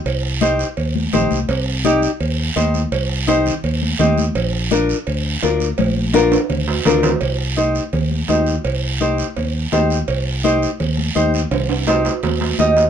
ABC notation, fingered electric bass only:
X:1
M:4/4
L:1/8
Q:1/4=168
K:Cm
V:1 name="Fingered electric bass" clef=bass
C,,4 E,,2 B,,, C,, | C,,4 E,,2 E,,2 | C,,4 E,,2 E,,2 | B,,,4 D,,2 D,,2 |
B,,,4 D,,2 D,,2 | C,,4 E,,2 E,,2 | C,,4 E,,2 E,,2 | C,,4 E,,2 E,,2 |
C,,4 E,,2 E,,2 |]